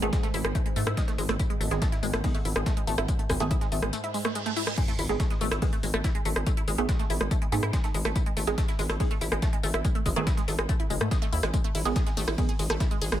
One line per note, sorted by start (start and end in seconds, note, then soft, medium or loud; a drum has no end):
0.00 0.10 G#1 medium
0.00 4.82 G#2 medium
0.00 0.11 D#3 loud
0.00 0.07 A3 medium
0.00 0.11 B3 medium
0.00 0.11 G#4 loud
0.00 closed hi-hat medium
0.13 0.16 G#3 medium
0.13 kick loud
0.13 snare loud
0.13 closed hi-hat medium
0.13 tambourine medium
0.23 0.26 A3 loud
0.23 snare soft
0.23 closed hi-hat soft
0.34 0.42 G#1 medium
0.34 0.39 E4 medium
0.34 open hi-hat medium
0.34 tambourine medium
0.45 0.53 G#1 medium
0.45 0.50 G#3 medium
0.45 cross-stick loud
0.45 closed hi-hat medium
0.55 0.60 A3 medium
0.55 kick loud
0.55 closed hi-hat medium
0.55 tambourine medium
0.66 0.69 G#3 medium
0.66 closed hi-hat medium
0.76 0.84 G#2 medium
0.76 0.79 A3 loud
0.76 open hi-hat loud
0.76 tambourine medium
0.87 0.95 G#2 medium
0.87 0.92 E4 medium
0.87 cross-stick loud
0.87 closed hi-hat medium
0.97 1.02 G#3 medium
0.97 kick loud
0.97 snare loud
0.97 closed hi-hat medium
0.97 tambourine medium
1.08 1.13 A3 medium
1.08 snare medium
1.08 closed hi-hat medium
1.18 1.26 G#1 loud
1.18 1.22 G#3 medium
1.18 open hi-hat medium
1.18 tambourine medium
1.29 1.37 G#1 medium
1.29 1.32 A3 loud
1.29 cross-stick medium
1.29 closed hi-hat soft
1.29 closed hi-hat medium
1.39 1.45 E4 medium
1.39 kick loud
1.39 closed hi-hat medium
1.39 tambourine medium
1.50 1.55 G#3 medium
1.50 closed hi-hat medium
1.60 1.69 G#1 loud
1.60 1.66 A3 medium
1.60 open hi-hat loud
1.60 tambourine medium
1.71 1.79 G#1 medium
1.71 1.77 D#3 loud
1.71 1.74 G#3 medium
1.71 1.77 B3 medium
1.71 1.77 G#4 loud
1.71 snare medium
1.71 closed hi-hat medium
1.82 1.85 A3 loud
1.82 kick loud
1.82 snare loud
1.82 closed hi-hat loud
1.82 tambourine medium
1.92 1.97 E4 medium
1.92 snare soft
1.92 closed hi-hat medium
2.03 2.11 G#1 medium
2.03 2.08 G#3 medium
2.03 open hi-hat medium
2.03 tambourine medium
2.13 2.22 G#1 medium
2.13 2.19 A3 medium
2.13 cross-stick loud
2.13 closed hi-hat soft
2.13 closed hi-hat medium
2.24 2.33 D#3 medium
2.24 2.27 G#3 medium
2.24 2.33 B3 medium
2.24 2.33 G#4 medium
2.24 kick loud
2.24 closed hi-hat medium
2.24 open hi-hat medium
2.35 2.38 A3 loud
2.35 closed hi-hat medium
2.45 2.53 G#1 loud
2.45 2.50 E4 medium
2.45 open hi-hat loud
2.45 tambourine medium
2.56 2.64 G#1 medium
2.56 2.61 G#3 medium
2.56 cross-stick loud
2.56 closed hi-hat medium
2.66 2.72 A3 medium
2.66 kick loud
2.66 snare loud
2.66 closed hi-hat medium
2.66 tambourine medium
2.77 2.80 G#3 medium
2.77 closed hi-hat medium
2.87 2.95 G#1 loud
2.87 2.91 A3 loud
2.87 open hi-hat medium
2.87 tambourine medium
2.98 3.06 G#1 medium
2.98 3.03 E4 medium
2.98 cross-stick medium
2.98 closed hi-hat medium
3.08 3.14 G#3 medium
3.08 kick loud
3.08 closed hi-hat loud
3.08 tambourine medium
3.19 3.24 A3 medium
3.19 closed hi-hat medium
3.29 3.38 G#1 loud
3.29 3.33 G#3 medium
3.29 kick medium
3.29 cross-stick medium
3.29 open hi-hat loud
3.29 tambourine medium
3.40 3.48 G#1 medium
3.40 3.49 D#3 loud
3.40 3.43 A3 loud
3.40 3.49 B3 medium
3.40 3.49 G#4 loud
3.40 closed hi-hat medium
3.51 3.56 E4 medium
3.51 kick loud
3.51 closed hi-hat loud
3.51 tambourine medium
3.61 3.67 G#3 medium
3.61 snare soft
3.61 closed hi-hat medium
3.72 3.80 G#1 medium
3.72 3.77 A3 medium
3.72 open hi-hat medium
3.72 tambourine medium
3.83 3.91 G#1 medium
3.83 3.86 G#3 medium
3.83 cross-stick loud
3.83 closed hi-hat medium
3.93 3.96 A3 loud
3.93 closed hi-hat medium
3.93 tambourine medium
3.93 reverse cymbal medium
4.04 4.09 E4 medium
4.04 closed hi-hat medium
4.14 4.19 G#3 medium
4.14 open hi-hat loud
4.14 tambourine medium
4.25 4.30 A3 medium
4.25 cross-stick loud
4.25 snare soft
4.25 closed hi-hat medium
4.35 4.38 G#3 medium
4.35 closed hi-hat loud
4.35 tambourine medium
4.46 4.49 A3 loud
4.46 closed hi-hat soft
4.46 closed hi-hat medium
4.56 4.62 E4 medium
4.56 open hi-hat medium
4.56 tambourine medium
4.67 4.72 G#3 medium
4.67 cross-stick medium
4.67 snare loud
4.67 closed hi-hat medium
4.67 tambourine medium
4.78 4.81 G#3 medium
4.78 kick loud
4.78 closed hi-hat medium
4.78 tambourine medium
4.78 crash loud
4.78 sub drop medium
4.88 4.91 A3 loud
4.88 closed hi-hat medium
4.99 5.07 G#1 loud
4.99 5.04 E4 medium
4.99 open hi-hat loud
4.99 tambourine medium
5.09 5.17 G#1 medium
5.09 5.15 D#3 loud
5.09 5.15 G#3 medium
5.09 5.15 B3 medium
5.09 5.15 G#4 loud
5.09 snare medium
5.09 closed hi-hat medium
5.20 5.25 A3 medium
5.20 kick loud
5.20 snare loud
5.20 closed hi-hat loud
5.20 tambourine medium
5.30 5.34 G#3 medium
5.30 snare soft
5.30 closed hi-hat medium
5.41 5.49 G#1 medium
5.41 5.44 A3 loud
5.41 open hi-hat medium
5.41 tambourine medium
5.51 5.60 G#1 medium
5.51 5.57 E4 medium
5.51 cross-stick medium
5.51 closed hi-hat medium
5.51 closed hi-hat soft
5.62 5.71 D#3 medium
5.62 5.67 G#3 medium
5.62 5.71 B3 medium
5.62 5.71 G#4 medium
5.62 kick loud
5.62 closed hi-hat medium
5.62 open hi-hat medium
5.73 5.78 A3 medium
5.73 closed hi-hat medium
5.83 5.91 G#1 loud
5.83 5.86 G#3 medium
5.83 open hi-hat loud
5.83 tambourine medium
5.94 6.02 G#1 medium
5.94 5.97 A3 loud
5.94 cross-stick medium
5.94 closed hi-hat medium
6.04 6.10 E4 medium
6.04 kick loud
6.04 snare loud
6.04 closed hi-hat loud
6.04 tambourine medium
6.15 6.20 G#3 medium
6.15 closed hi-hat medium
6.25 6.33 G#1 medium
6.25 6.31 A3 medium
6.25 open hi-hat loud
6.25 tambourine medium
6.36 6.44 G#1 medium
6.36 6.39 G#3 medium
6.36 cross-stick medium
6.36 closed hi-hat medium
6.46 6.50 A3 loud
6.46 kick loud
6.46 closed hi-hat loud
6.46 tambourine medium
6.57 6.62 E4 medium
6.57 closed hi-hat medium
6.68 6.76 G#1 loud
6.68 6.73 G#3 medium
6.68 open hi-hat loud
6.68 tambourine medium
6.78 6.86 G#1 medium
6.78 6.87 D#3 loud
6.78 6.83 A3 medium
6.78 6.87 B3 medium
6.78 6.87 G#4 loud
6.78 closed hi-hat medium
6.89 6.92 G#3 medium
6.89 kick loud
6.89 snare loud
6.89 closed hi-hat loud
6.89 tambourine medium
6.99 7.03 A3 loud
6.99 snare soft
6.99 closed hi-hat medium
7.10 7.18 G#1 medium
7.10 7.15 E4 medium
7.10 open hi-hat loud
7.10 tambourine medium
7.20 7.28 G#1 medium
7.20 7.26 G#3 medium
7.20 cross-stick medium
7.20 closed hi-hat medium
7.31 7.36 A3 medium
7.31 kick loud
7.31 closed hi-hat medium
7.31 tambourine medium
7.42 7.45 G#3 medium
7.42 closed hi-hat medium
7.52 7.60 G#2 medium
7.52 7.61 D#3 loud
7.52 7.55 A3 loud
7.52 7.61 B3 medium
7.52 7.61 G#4 loud
7.52 open hi-hat loud
7.52 tambourine medium
7.63 7.71 G#2 medium
7.63 7.68 E4 medium
7.63 cross-stick medium
7.63 closed hi-hat medium
7.73 7.79 G#3 medium
7.73 kick loud
7.73 snare loud
7.73 closed hi-hat loud
7.73 tambourine medium
7.84 7.89 A3 medium
7.84 snare medium
7.84 closed hi-hat medium
7.94 8.03 G#1 loud
7.94 7.98 G#3 medium
7.94 open hi-hat loud
7.94 tambourine medium
8.05 8.13 G#1 medium
8.05 8.08 A3 loud
8.05 cross-stick medium
8.05 closed hi-hat medium
8.05 closed hi-hat soft
8.16 8.21 E4 medium
8.16 kick loud
8.16 closed hi-hat medium
8.16 tambourine medium
8.26 8.31 G#3 medium
8.26 closed hi-hat medium
8.37 8.45 G#1 loud
8.37 8.42 A3 medium
8.37 open hi-hat loud
8.37 tambourine medium
8.47 8.55 G#1 medium
8.47 8.53 D#3 loud
8.47 8.50 G#3 medium
8.47 8.53 B3 medium
8.47 8.53 G#4 loud
8.47 snare medium
8.47 closed hi-hat medium
8.58 8.61 A3 loud
8.58 kick loud
8.58 snare loud
8.58 closed hi-hat loud
8.58 tambourine medium
8.68 8.74 E4 medium
8.68 snare soft
8.68 closed hi-hat medium
8.79 8.87 G#1 medium
8.79 8.84 G#3 medium
8.79 open hi-hat loud
8.79 tambourine medium
8.90 8.98 G#1 medium
8.90 8.95 A3 medium
8.90 cross-stick medium
8.90 closed hi-hat soft
8.90 closed hi-hat medium
9.00 9.09 D#3 medium
9.00 9.03 G#3 medium
9.00 9.09 B3 medium
9.00 9.09 G#4 medium
9.00 kick loud
9.00 closed hi-hat medium
9.00 open hi-hat medium
9.11 9.14 A3 loud
9.11 closed hi-hat medium
9.21 9.29 G#1 loud
9.21 9.26 E4 medium
9.21 open hi-hat loud
9.21 tambourine medium
9.32 9.40 G#1 medium
9.32 9.37 G#3 medium
9.32 cross-stick medium
9.32 closed hi-hat medium
9.42 9.48 A3 medium
9.42 kick loud
9.42 snare loud
9.42 closed hi-hat medium
9.42 tambourine medium
9.53 9.56 G#3 medium
9.53 closed hi-hat medium
9.63 9.72 G#1 loud
9.63 9.67 A3 loud
9.63 open hi-hat loud
9.63 tambourine medium
9.74 9.82 G#1 medium
9.74 9.79 E4 medium
9.74 cross-stick medium
9.74 closed hi-hat medium
9.85 9.90 G#3 medium
9.85 kick loud
9.85 closed hi-hat medium
9.85 tambourine medium
9.95 10.00 A3 medium
9.95 closed hi-hat medium
10.06 10.14 G#1 medium
10.06 10.09 G#3 medium
10.06 kick medium
10.06 open hi-hat loud
10.06 tambourine medium
10.16 10.24 G#1 medium
10.16 10.25 D#3 loud
10.16 10.19 A3 loud
10.16 10.25 B3 medium
10.16 10.25 G#4 loud
10.16 closed hi-hat medium
10.27 10.32 E4 medium
10.27 kick loud
10.27 snare loud
10.27 closed hi-hat loud
10.27 tambourine medium
10.37 10.43 G#3 medium
10.37 snare soft
10.37 closed hi-hat medium
10.48 10.56 G#1 medium
10.48 10.53 A3 medium
10.48 open hi-hat loud
10.48 tambourine medium
10.59 10.67 G#1 medium
10.59 10.62 G#3 medium
10.59 cross-stick loud
10.59 closed hi-hat medium
10.69 10.72 A3 loud
10.69 kick loud
10.69 closed hi-hat medium
10.69 tambourine medium
10.80 10.85 E4 medium
10.80 closed hi-hat medium
10.90 10.98 F#1 loud
10.90 10.95 G#3 medium
10.90 open hi-hat loud
10.90 tambourine medium
11.01 11.09 G#2 medium
11.01 11.06 A3 medium
11.01 cross-stick medium
11.01 closed hi-hat medium
11.11 11.14 G#3 medium
11.11 kick loud
11.11 snare loud
11.11 closed hi-hat loud
11.11 tambourine medium
11.22 11.25 A3 loud
11.22 snare medium
11.22 closed hi-hat medium
11.32 11.41 D#2 loud
11.32 11.38 E4 medium
11.32 open hi-hat loud
11.32 tambourine medium
11.43 11.51 G#1 medium
11.43 11.48 G#3 medium
11.43 cross-stick medium
11.43 closed hi-hat soft
11.43 closed hi-hat medium
11.54 11.57 G#3 medium
11.54 kick loud
11.54 closed hi-hat medium
11.54 tambourine medium
11.64 11.67 A3 loud
11.64 closed hi-hat medium
11.75 11.83 G#1 loud
11.75 11.80 E4 medium
11.75 open hi-hat loud
11.75 ride medium
11.75 tambourine medium
11.85 11.93 G#1 medium
11.85 11.91 D#3 loud
11.85 11.91 G#3 medium
11.85 11.91 B3 medium
11.85 11.91 G#4 loud
11.85 snare medium
11.85 closed hi-hat medium
11.96 11.99 G#4 medium
11.96 kick loud
11.96 snare loud
11.96 closed hi-hat medium
11.96 tambourine medium
12.06 12.10 G#3 medium
12.06 snare soft
12.06 closed hi-hat medium
12.17 12.25 G#1 medium
12.17 12.20 A3 loud
12.17 open hi-hat medium
12.17 ride medium
12.17 tambourine medium
12.28 12.36 G#1 medium
12.28 12.33 E4 medium
12.28 cross-stick medium
12.28 closed hi-hat soft
12.28 closed hi-hat medium
12.38 12.47 D#3 medium
12.38 12.43 G#3 medium
12.38 12.47 B3 medium
12.38 12.47 G#4 medium
12.38 kick loud
12.38 closed hi-hat medium
12.38 open hi-hat medium
12.49 12.52 G#4 medium
12.49 closed hi-hat medium
12.59 12.67 G#1 medium
12.59 12.62 G#3 medium
12.59 open hi-hat loud
12.59 ride medium
12.59 tambourine medium
12.70 12.78 G#1 medium
12.70 12.73 A3 loud
12.70 cross-stick medium
12.70 closed hi-hat medium
12.80 12.86 E4 medium
12.80 kick loud
12.80 snare loud
12.80 closed hi-hat medium
12.80 tambourine medium
12.91 12.96 G#3 medium
12.91 closed hi-hat medium
13.01 13.10 G#1 loud
13.01 13.05 G#4 medium
13.01 open hi-hat loud
13.01 ride medium
13.01 tambourine medium
13.12 13.20 G#1 medium
13.12 13.15 G#3 medium
13.12 cross-stick medium
13.12 closed hi-hat medium